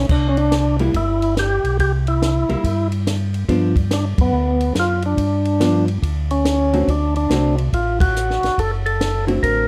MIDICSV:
0, 0, Header, 1, 5, 480
1, 0, Start_track
1, 0, Tempo, 424328
1, 109, Time_signature, 4, 2, 24, 8
1, 10948, End_track
2, 0, Start_track
2, 0, Title_t, "Tonewheel organ"
2, 0, Program_c, 0, 16
2, 129, Note_on_c, 0, 62, 84
2, 312, Note_off_c, 0, 62, 0
2, 327, Note_on_c, 0, 61, 64
2, 423, Note_off_c, 0, 61, 0
2, 424, Note_on_c, 0, 62, 103
2, 867, Note_off_c, 0, 62, 0
2, 1092, Note_on_c, 0, 64, 87
2, 1527, Note_off_c, 0, 64, 0
2, 1574, Note_on_c, 0, 67, 91
2, 2007, Note_off_c, 0, 67, 0
2, 2039, Note_on_c, 0, 67, 100
2, 2175, Note_off_c, 0, 67, 0
2, 2354, Note_on_c, 0, 64, 76
2, 3259, Note_off_c, 0, 64, 0
2, 4450, Note_on_c, 0, 62, 77
2, 4583, Note_off_c, 0, 62, 0
2, 4764, Note_on_c, 0, 59, 96
2, 5354, Note_off_c, 0, 59, 0
2, 5425, Note_on_c, 0, 65, 93
2, 5694, Note_off_c, 0, 65, 0
2, 5721, Note_on_c, 0, 62, 82
2, 6621, Note_off_c, 0, 62, 0
2, 7138, Note_on_c, 0, 61, 87
2, 7805, Note_off_c, 0, 61, 0
2, 7805, Note_on_c, 0, 62, 82
2, 8082, Note_off_c, 0, 62, 0
2, 8108, Note_on_c, 0, 62, 89
2, 8547, Note_off_c, 0, 62, 0
2, 8757, Note_on_c, 0, 65, 83
2, 9038, Note_off_c, 0, 65, 0
2, 9057, Note_on_c, 0, 66, 107
2, 9721, Note_on_c, 0, 69, 106
2, 9725, Note_off_c, 0, 66, 0
2, 9856, Note_off_c, 0, 69, 0
2, 10021, Note_on_c, 0, 69, 96
2, 10464, Note_off_c, 0, 69, 0
2, 10666, Note_on_c, 0, 70, 91
2, 10948, Note_off_c, 0, 70, 0
2, 10948, End_track
3, 0, Start_track
3, 0, Title_t, "Hollow-body jazz guitar"
3, 0, Program_c, 1, 26
3, 906, Note_on_c, 1, 55, 71
3, 912, Note_on_c, 1, 58, 70
3, 917, Note_on_c, 1, 64, 84
3, 1055, Note_off_c, 1, 55, 0
3, 1058, Note_off_c, 1, 58, 0
3, 1061, Note_off_c, 1, 64, 0
3, 2821, Note_on_c, 1, 55, 64
3, 2826, Note_on_c, 1, 58, 61
3, 2835, Note_on_c, 1, 64, 76
3, 2971, Note_off_c, 1, 55, 0
3, 2974, Note_off_c, 1, 58, 0
3, 2978, Note_off_c, 1, 64, 0
3, 3943, Note_on_c, 1, 53, 62
3, 3947, Note_on_c, 1, 59, 57
3, 3952, Note_on_c, 1, 62, 67
3, 4222, Note_off_c, 1, 53, 0
3, 4224, Note_off_c, 1, 59, 0
3, 4227, Note_off_c, 1, 62, 0
3, 6342, Note_on_c, 1, 53, 65
3, 6346, Note_on_c, 1, 59, 61
3, 6353, Note_on_c, 1, 62, 70
3, 6621, Note_off_c, 1, 53, 0
3, 6623, Note_off_c, 1, 59, 0
3, 6626, Note_off_c, 1, 62, 0
3, 7616, Note_on_c, 1, 50, 52
3, 7626, Note_on_c, 1, 57, 56
3, 7628, Note_on_c, 1, 60, 62
3, 7631, Note_on_c, 1, 66, 65
3, 7768, Note_off_c, 1, 50, 0
3, 7773, Note_off_c, 1, 57, 0
3, 7774, Note_off_c, 1, 60, 0
3, 7775, Note_off_c, 1, 66, 0
3, 8272, Note_on_c, 1, 50, 64
3, 8277, Note_on_c, 1, 57, 62
3, 8279, Note_on_c, 1, 60, 64
3, 8286, Note_on_c, 1, 66, 66
3, 8546, Note_off_c, 1, 50, 0
3, 8549, Note_off_c, 1, 57, 0
3, 8549, Note_off_c, 1, 60, 0
3, 8553, Note_off_c, 1, 66, 0
3, 10487, Note_on_c, 1, 50, 60
3, 10498, Note_on_c, 1, 57, 55
3, 10499, Note_on_c, 1, 66, 67
3, 10501, Note_on_c, 1, 60, 66
3, 10948, Note_off_c, 1, 50, 0
3, 10948, Note_off_c, 1, 57, 0
3, 10948, Note_off_c, 1, 60, 0
3, 10948, Note_off_c, 1, 66, 0
3, 10948, End_track
4, 0, Start_track
4, 0, Title_t, "Tonewheel organ"
4, 0, Program_c, 2, 16
4, 109, Note_on_c, 2, 36, 81
4, 1022, Note_off_c, 2, 36, 0
4, 1065, Note_on_c, 2, 31, 77
4, 1810, Note_off_c, 2, 31, 0
4, 1852, Note_on_c, 2, 35, 65
4, 2013, Note_off_c, 2, 35, 0
4, 2026, Note_on_c, 2, 36, 83
4, 2770, Note_off_c, 2, 36, 0
4, 2820, Note_on_c, 2, 36, 37
4, 2904, Note_off_c, 2, 36, 0
4, 2982, Note_on_c, 2, 43, 79
4, 3898, Note_off_c, 2, 43, 0
4, 3943, Note_on_c, 2, 43, 82
4, 4688, Note_off_c, 2, 43, 0
4, 4730, Note_on_c, 2, 42, 68
4, 4890, Note_off_c, 2, 42, 0
4, 4895, Note_on_c, 2, 38, 81
4, 5345, Note_off_c, 2, 38, 0
4, 5374, Note_on_c, 2, 42, 69
4, 5825, Note_off_c, 2, 42, 0
4, 5852, Note_on_c, 2, 43, 86
4, 6772, Note_off_c, 2, 43, 0
4, 6815, Note_on_c, 2, 38, 75
4, 7734, Note_off_c, 2, 38, 0
4, 7782, Note_on_c, 2, 38, 82
4, 8228, Note_off_c, 2, 38, 0
4, 8253, Note_on_c, 2, 36, 70
4, 8704, Note_off_c, 2, 36, 0
4, 8741, Note_on_c, 2, 33, 80
4, 9486, Note_off_c, 2, 33, 0
4, 9530, Note_on_c, 2, 33, 36
4, 9616, Note_off_c, 2, 33, 0
4, 9710, Note_on_c, 2, 30, 86
4, 10622, Note_off_c, 2, 30, 0
4, 10666, Note_on_c, 2, 33, 80
4, 10948, Note_off_c, 2, 33, 0
4, 10948, End_track
5, 0, Start_track
5, 0, Title_t, "Drums"
5, 104, Note_on_c, 9, 49, 69
5, 105, Note_on_c, 9, 36, 68
5, 217, Note_off_c, 9, 49, 0
5, 219, Note_off_c, 9, 36, 0
5, 418, Note_on_c, 9, 51, 41
5, 531, Note_off_c, 9, 51, 0
5, 584, Note_on_c, 9, 38, 61
5, 586, Note_on_c, 9, 44, 51
5, 586, Note_on_c, 9, 51, 66
5, 697, Note_off_c, 9, 38, 0
5, 700, Note_off_c, 9, 44, 0
5, 700, Note_off_c, 9, 51, 0
5, 896, Note_on_c, 9, 51, 46
5, 1009, Note_off_c, 9, 51, 0
5, 1065, Note_on_c, 9, 36, 34
5, 1066, Note_on_c, 9, 51, 59
5, 1178, Note_off_c, 9, 36, 0
5, 1180, Note_off_c, 9, 51, 0
5, 1382, Note_on_c, 9, 51, 48
5, 1495, Note_off_c, 9, 51, 0
5, 1548, Note_on_c, 9, 38, 64
5, 1550, Note_on_c, 9, 44, 62
5, 1550, Note_on_c, 9, 51, 61
5, 1661, Note_off_c, 9, 38, 0
5, 1663, Note_off_c, 9, 44, 0
5, 1663, Note_off_c, 9, 51, 0
5, 1862, Note_on_c, 9, 51, 44
5, 1975, Note_off_c, 9, 51, 0
5, 2028, Note_on_c, 9, 36, 32
5, 2031, Note_on_c, 9, 51, 53
5, 2142, Note_off_c, 9, 36, 0
5, 2144, Note_off_c, 9, 51, 0
5, 2341, Note_on_c, 9, 51, 44
5, 2454, Note_off_c, 9, 51, 0
5, 2514, Note_on_c, 9, 38, 64
5, 2516, Note_on_c, 9, 44, 62
5, 2516, Note_on_c, 9, 51, 57
5, 2627, Note_off_c, 9, 38, 0
5, 2629, Note_off_c, 9, 44, 0
5, 2629, Note_off_c, 9, 51, 0
5, 2821, Note_on_c, 9, 51, 45
5, 2935, Note_off_c, 9, 51, 0
5, 2987, Note_on_c, 9, 36, 35
5, 2991, Note_on_c, 9, 51, 60
5, 3100, Note_off_c, 9, 36, 0
5, 3104, Note_off_c, 9, 51, 0
5, 3301, Note_on_c, 9, 51, 45
5, 3414, Note_off_c, 9, 51, 0
5, 3472, Note_on_c, 9, 38, 63
5, 3474, Note_on_c, 9, 44, 58
5, 3474, Note_on_c, 9, 51, 64
5, 3585, Note_off_c, 9, 38, 0
5, 3587, Note_off_c, 9, 44, 0
5, 3587, Note_off_c, 9, 51, 0
5, 3779, Note_on_c, 9, 51, 42
5, 3892, Note_off_c, 9, 51, 0
5, 3943, Note_on_c, 9, 36, 33
5, 3946, Note_on_c, 9, 51, 55
5, 4056, Note_off_c, 9, 36, 0
5, 4059, Note_off_c, 9, 51, 0
5, 4251, Note_on_c, 9, 36, 57
5, 4258, Note_on_c, 9, 51, 45
5, 4364, Note_off_c, 9, 36, 0
5, 4371, Note_off_c, 9, 51, 0
5, 4421, Note_on_c, 9, 38, 66
5, 4423, Note_on_c, 9, 44, 51
5, 4423, Note_on_c, 9, 51, 67
5, 4534, Note_off_c, 9, 38, 0
5, 4536, Note_off_c, 9, 44, 0
5, 4536, Note_off_c, 9, 51, 0
5, 4730, Note_on_c, 9, 36, 77
5, 4732, Note_on_c, 9, 51, 68
5, 4843, Note_off_c, 9, 36, 0
5, 4845, Note_off_c, 9, 51, 0
5, 5210, Note_on_c, 9, 51, 46
5, 5323, Note_off_c, 9, 51, 0
5, 5376, Note_on_c, 9, 38, 61
5, 5378, Note_on_c, 9, 44, 53
5, 5378, Note_on_c, 9, 51, 59
5, 5489, Note_off_c, 9, 38, 0
5, 5491, Note_off_c, 9, 44, 0
5, 5491, Note_off_c, 9, 51, 0
5, 5683, Note_on_c, 9, 51, 43
5, 5796, Note_off_c, 9, 51, 0
5, 5854, Note_on_c, 9, 36, 32
5, 5858, Note_on_c, 9, 51, 57
5, 5967, Note_off_c, 9, 36, 0
5, 5971, Note_off_c, 9, 51, 0
5, 6169, Note_on_c, 9, 51, 43
5, 6282, Note_off_c, 9, 51, 0
5, 6340, Note_on_c, 9, 38, 62
5, 6342, Note_on_c, 9, 44, 50
5, 6342, Note_on_c, 9, 51, 63
5, 6453, Note_off_c, 9, 38, 0
5, 6455, Note_off_c, 9, 44, 0
5, 6455, Note_off_c, 9, 51, 0
5, 6651, Note_on_c, 9, 51, 43
5, 6765, Note_off_c, 9, 51, 0
5, 6817, Note_on_c, 9, 36, 34
5, 6825, Note_on_c, 9, 51, 61
5, 6930, Note_off_c, 9, 36, 0
5, 6938, Note_off_c, 9, 51, 0
5, 7133, Note_on_c, 9, 51, 47
5, 7246, Note_off_c, 9, 51, 0
5, 7298, Note_on_c, 9, 38, 62
5, 7300, Note_on_c, 9, 44, 53
5, 7300, Note_on_c, 9, 51, 64
5, 7411, Note_off_c, 9, 38, 0
5, 7413, Note_off_c, 9, 44, 0
5, 7413, Note_off_c, 9, 51, 0
5, 7618, Note_on_c, 9, 51, 42
5, 7731, Note_off_c, 9, 51, 0
5, 7781, Note_on_c, 9, 36, 30
5, 7787, Note_on_c, 9, 51, 52
5, 7894, Note_off_c, 9, 36, 0
5, 7900, Note_off_c, 9, 51, 0
5, 8095, Note_on_c, 9, 51, 44
5, 8208, Note_off_c, 9, 51, 0
5, 8261, Note_on_c, 9, 38, 63
5, 8264, Note_on_c, 9, 44, 50
5, 8264, Note_on_c, 9, 51, 64
5, 8375, Note_off_c, 9, 38, 0
5, 8377, Note_off_c, 9, 44, 0
5, 8377, Note_off_c, 9, 51, 0
5, 8578, Note_on_c, 9, 51, 44
5, 8691, Note_off_c, 9, 51, 0
5, 8743, Note_on_c, 9, 36, 34
5, 8749, Note_on_c, 9, 51, 58
5, 8856, Note_off_c, 9, 36, 0
5, 8862, Note_off_c, 9, 51, 0
5, 9054, Note_on_c, 9, 36, 81
5, 9062, Note_on_c, 9, 51, 73
5, 9167, Note_off_c, 9, 36, 0
5, 9175, Note_off_c, 9, 51, 0
5, 9233, Note_on_c, 9, 44, 58
5, 9346, Note_off_c, 9, 44, 0
5, 9392, Note_on_c, 9, 38, 30
5, 9505, Note_off_c, 9, 38, 0
5, 9537, Note_on_c, 9, 51, 43
5, 9550, Note_on_c, 9, 38, 40
5, 9650, Note_off_c, 9, 51, 0
5, 9663, Note_off_c, 9, 38, 0
5, 9707, Note_on_c, 9, 36, 32
5, 9714, Note_on_c, 9, 51, 53
5, 9820, Note_off_c, 9, 36, 0
5, 9827, Note_off_c, 9, 51, 0
5, 10025, Note_on_c, 9, 51, 47
5, 10138, Note_off_c, 9, 51, 0
5, 10190, Note_on_c, 9, 38, 64
5, 10192, Note_on_c, 9, 44, 54
5, 10192, Note_on_c, 9, 51, 65
5, 10303, Note_off_c, 9, 38, 0
5, 10305, Note_off_c, 9, 44, 0
5, 10305, Note_off_c, 9, 51, 0
5, 10499, Note_on_c, 9, 51, 44
5, 10613, Note_off_c, 9, 51, 0
5, 10666, Note_on_c, 9, 36, 33
5, 10673, Note_on_c, 9, 51, 56
5, 10779, Note_off_c, 9, 36, 0
5, 10786, Note_off_c, 9, 51, 0
5, 10948, End_track
0, 0, End_of_file